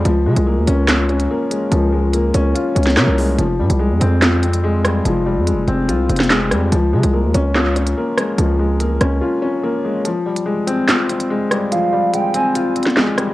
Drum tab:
HH |x--------x--------x-----x-----x--x--------x-----|x-----------x-----x-----x-----x-x-x-------o-----|x--------x--------x-----x-----x--x--------x-----|x-----------x-----x-----x-----x-x-x-------x-----|
CP |------------------------x-----------------------|------------------------------------x-----------|------------------------x-----------------------|------------------------------------x-----------|
SD |------------------------o-----------------------|---------------------------------o--o-----------|------------------------o-----------------r-----|---------------------------------o--o-----r-----|

HH |x--------x--------x-----x-----x--x--------x-----|x-----------x-----x-----------------------------|x--------x--------x-----x-----x--x--------x-----|x-----------x-----x-----x-----x-x-x-------x-----|
CP |------------------------x-----------------------|------------------------------------------------|------------------------x-----------------------|------------------------------------x-----------|
SD |------------------------o-----------------r-----|------------------r-----------------------------|------------------------o-----------------r-----|---------------------------------o--o-----r-----|